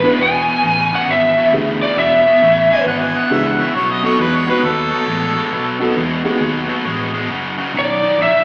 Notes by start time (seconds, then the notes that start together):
Already playing: B4
0.03 B2 G#3 B3 D4 E4 B4
0.19 E1 E2 B2 G#5
0.48 E2 B2
0.64 A1 E2 C#3
0.93 E2 C#3 F#5
1.08 G#1 E2 B2 E5
1.37 E2 B2
1.52 D2 E2 C#3 B3 D4 E4 G#4
1.81 E2 C#3 D5
1.97 E1 E2 B2 E5
2.26 E2 B2
2.42 A1 E2 C#3
2.70 E2 C#3 G#5
2.86 G#1 E2 B2 F#5
3.03 G#5
3.14 E2 B2 F#5
3.30 C#2 E2 C#3 B3 D4 E4 G#4 E5
3.47 F#5
3.59 E2 C#3 E5
3.75 B1 B2 F#3 C#5
3.92 D#5
4.02 B2 F#3 B3 D#4 F#4 A4 C#5
4.19 E2 B2 G#3 B4
4.36 C#5
4.47 B2 G#3 B3 D#4 F#4 B4
4.63 D#2 B2 F#3 A4
4.91 B2 F#3
5.08 A1 B2 G#3
5.37 B2 G#3
5.52 B1 B2 F#3
5.79 B2 F#3 B3 D#4 F#4 A4
5.96 E2 B2 G#3
6.24 B2 G#3 B3 D#4 F#4 G#4
6.41 D#2 B2 F#3
6.69 B2 F#3
6.85 A1 B2 G#3
7.14 B2 G#3
7.30 F#1 F#2 C#3
7.58 F#2 C#3
7.74 B1 F#2 D#3
7.79 D5
8.02 F#2 D#3
8.19 A#1 F#2 C#3 E5